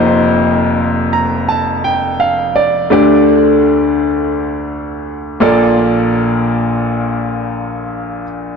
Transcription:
Already playing: F1 F2 A#3 D#4 F4 C5
1.13 A#5
1.49 A5
1.84 G5
2.20 F5
2.56 D5
2.90 D2 D3 A3 D4 G4 D5
5.40 A#1 A#2 A#3 F4 A4 D5

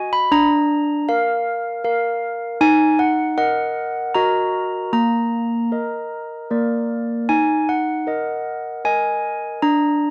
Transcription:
Already playing: F#4 D#5
0.13 B5
0.32 D4 A#5
1.09 A#4 F5
1.84 A#4 F5
2.61 D#4 G#5
2.99 F#5
3.38 A#4 D#5 F#5
4.15 F#4 A#4 D#5 A#5
4.93 A#3 A#5
5.72 A#4 D#5
6.51 A#3 A#4 D5
7.29 D#4 G#5
7.69 F#5
8.07 A#4 D#5
8.85 A#4 D#5 G#5
9.62 D4 A#5

